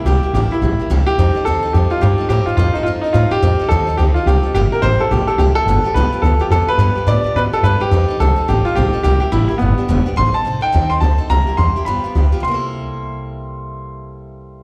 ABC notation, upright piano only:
X:1
M:4/4
L:1/8
Q:"Swing" 1/4=213
K:F
V:1 name="Upright piano"
G2 G E3 z G- | G2 A2 G F G2 | G F F _E F E F G- | G2 A2 G F G2 |
G B c A G A G A- | A2 =B2 A G A B- | =B2 d2 B A B G- | G2 A2 G F G2 |
G G E E =B,3 z | c' a2 g2 c' a2 | b2 c'2 =b3 z | c'8- |
c'8 |]